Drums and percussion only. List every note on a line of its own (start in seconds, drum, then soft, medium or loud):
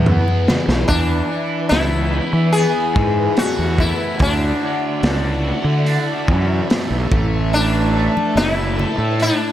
0.06 floor tom loud
0.28 high conga medium
0.48 snare loud
0.48 high conga medium
0.48 low conga medium
0.69 snare medium
0.88 kick medium
0.88 open hi-hat soft
1.71 snare loud
1.71 open hi-hat soft
2.54 open hi-hat soft
2.96 kick medium
3.37 snare loud
3.37 open hi-hat medium
3.78 kick medium
4.19 kick medium
4.19 open hi-hat soft
5.03 snare loud
5.03 open hi-hat soft
5.86 open hi-hat soft
6.28 kick medium
6.70 snare loud
6.70 open hi-hat medium
7.12 kick loud
7.53 open hi-hat soft
8.17 high conga medium
8.37 snare loud
8.37 open hi-hat soft
8.79 low conga medium
9.20 open hi-hat soft